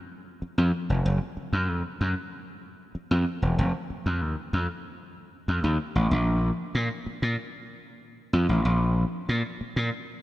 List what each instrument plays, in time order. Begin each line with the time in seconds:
0.42 muted slap bass stroke
0.58 slap bass F2
0.90 slap bass F1
1.05 slap bass F#1
1.37 muted slap bass stroke
1.53 slap bass F#2
1.69 slap bass F2
2.01 slap bass F#2
2.95 muted slap bass stroke
3.11 slap bass F2
3.42 slap bass E1
3.59 slap bass F1
3.90 muted slap bass stroke
4.06 slap bass F2
4.22 slap bass D#2
4.53 slap bass F2
5.48 slap bass F2
5.64 slap bass D#2
5.96 slap bass A1
6.11 slap bass A#1
6.75 slap bass A#2
7.06 muted slap bass stroke
7.22 slap bass A#2
8.33 slap bass F2
8.49 slap bass A1
8.65 slap bass A#1
9.29 slap bass A#2
9.61 muted slap bass stroke
9.76 slap bass A#2